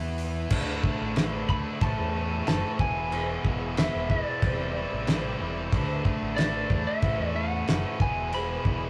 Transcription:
Already playing: E2 E3 B3 E4
0.18 open hi-hat
0.49 D2 D3 A3 D4 E4 A4 E5, kick, crash
0.84 D3 A3 D4 E4, kick
1.01 A1
1.16 D3 A3 D4 E4, snare, crash
1.49 D2 D3 A3 D4 E4 B5, kick
1.80 A1 A2 E3 A3 C#4 E4 A4 E5 A5, kick, crash
1.84 E4
1.99 E2
2.15 A2 E3 A3 C#4 E4
2.47 F#1 A2 E3 A3 C#4 E4 A5, snare, crash
2.79 E1 E2 B2 E3 G#3 B3 E4 G#4 E5 G#5, kick
3.12 E2 B2 E3 G#3 B3 E4, crash
3.44 E1 E2 B2 E3 G#3 B3 E4, kick
3.77 E2 B2 E3 G#3 B3 E4 E5, snare, crash
3.94 E1
4.09 E2 B2 E3 G#3 B3 E4 D5, kick
4.42 E1 C3 E3 G3 C4 E4 G4 D5, kick, crash
4.75 C3 E3 G3 C4 E4
4.92 A1
5.07 C3 E3 G3 C4 E4, snare, crash
5.38 E1 C3 E3 G3 C4 E4
5.72 D2 D3 A3 D4 E4 A4 E5, kick, crash
6.05 D3 A3 D4 E4, kick
6.22 A1
6.36 D3 A3 D4 E4 D5, snare, crash
6.69 E2 D3 A3 D4 E4, kick
6.87 E5
7.02 A1 A2 E3 A3 C#4 E4 A4 E5, kick, crash
7.20 E2
7.35 A2 E3 A3 C#4 E4 F#5
7.68 F#1 A2 E3 A3 C#4 E4, snare, crash
7.99 E1 E2 B2 E3 G#3 B3 E4 G#4 E5 G#5, kick
8.32 E2 B2 E3 G#3 B3 E4 B5, crash
8.64 E1 E2 B2 E3 G#3 B3 E4, kick

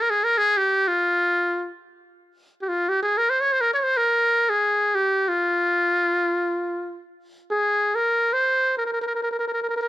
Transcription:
0.01 A#4
0.10 G#4
0.24 A#4
0.38 G#4
0.57 G4
0.88 F4
2.62 G4
2.68 F4
2.89 G4
3.03 G#4
3.18 A#4
3.30 C5
3.41 C#5
3.53 C5
3.61 A#4
3.74 C#5
3.80 C5 C#5
3.97 A#4
4.50 G#4
4.95 G4
5.29 F4
7.51 G#4
7.95 A#4
8.33 C5
8.77 A#4
8.86 A#4
8.93 A#4
9.01 A#4
9.07 A#4
9.15 A#4
9.23 A#4
9.31 A#4
9.39 A#4
9.48 A#4
9.53 A#4
9.62 A#4
9.69 A#4
9.76 A#4
9.81 A#4

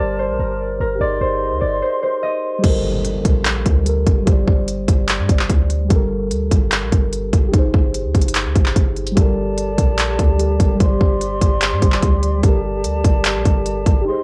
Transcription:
Already playing: G3 G4 A#4 C5 A5
0.00 G1 D5
0.19 C5
0.29 A#1
0.39 G1 A#4
0.80 G1 A#4
0.95 D#4 G4
1.00 G1 G#4 C5 D5 D#5 C6
1.06 C5
1.21 G1 C5
1.52 D2
1.61 G1 D5
1.82 C5
2.03 C5
2.23 D#5
2.58 G3 G4
2.64 G1 A4, kick, closed hi-hat, crash, impact
2.69 A#4
3.05 closed hi-hat
3.25 A#1, kick, closed hi-hat
3.45 clap, closed hi-hat
3.66 D2, kick, closed hi-hat
3.83 G3 G4 A4, closed hi-hat
3.89 A#4
4.07 G1, kick, closed hi-hat
4.22 G3 G4
4.27 G1 C5, kick, closed hi-hat
4.32 D5
4.47 G1, kick
4.68 closed hi-hat
4.88 G1, kick, closed hi-hat
5.09 clap, closed hi-hat
5.19 G2
5.26 G1 G3 G4 C5, kick, closed hi-hat
5.31 D5
5.39 clap
5.49 D2, kick, closed hi-hat
5.70 closed hi-hat
5.85 G3 G4
5.90 G1 A4, kick, closed hi-hat
5.96 A#4
6.31 D2, closed hi-hat
6.51 G1, kick, closed hi-hat
6.72 clap, closed hi-hat
6.82 A#1
6.92 G1, kick, closed hi-hat
7.13 closed hi-hat
7.33 G1, kick, closed hi-hat
7.48 D#4 G4
7.54 G1 G#4, kick, closed hi-hat
7.59 C5
7.74 G1, kick
7.94 closed hi-hat
8.04 D2
8.15 G1, kick, closed hi-hat
8.22 closed hi-hat
8.28 closed hi-hat
8.35 clap, closed hi-hat
8.45 D2
8.56 G1, kick, closed hi-hat
8.66 clap
8.76 G1, kick, closed hi-hat
8.96 closed hi-hat
9.07 closed hi-hat
9.12 G3 G4
9.17 G1 G4 A4 D5 A5, kick, closed hi-hat
9.22 A#4
9.58 closed hi-hat
9.78 A#1, kick, closed hi-hat
9.99 clap, closed hi-hat
10.19 D2, kick, closed hi-hat
10.37 G3 G4 A4, closed hi-hat
10.42 A#4
10.60 G1, kick, closed hi-hat
10.75 G3 G4
10.80 G1 C5 D5 C6, kick, closed hi-hat
10.85 D5
11.01 G1, kick
11.21 closed hi-hat
11.41 G1, kick, closed hi-hat
11.62 clap, closed hi-hat
11.72 G2
11.79 G1 G3 G4 C5, kick, closed hi-hat
11.85 D5
11.92 clap
12.03 D2, kick, closed hi-hat
12.23 closed hi-hat
12.38 G3 G4
12.43 G1 A4 D5 A5, kick, closed hi-hat
12.49 A#4
12.84 D2, closed hi-hat
13.05 G1, kick, closed hi-hat
13.25 clap, closed hi-hat
13.35 A#1
13.45 G1, kick, closed hi-hat
13.66 closed hi-hat
13.86 G1, kick, closed hi-hat
14.01 D#4 G4
14.07 G#4 C5 D#5 C6
14.12 C5

